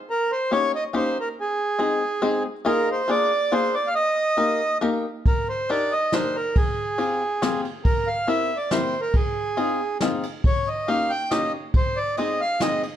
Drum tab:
RD |------|------|------|------|
SD |------|------|------|------|
BD |------|------|------|------|

RD |x-x-x-|x-x-xx|x-x-x-|x-x-xx|
SD |----o-|----o-|----o-|----o-|
BD |o-----|o-----|o-----|o-----|

RD |x-x-x-|x-x-xx|
SD |----o-|----o-|
BD |o-----|o-----|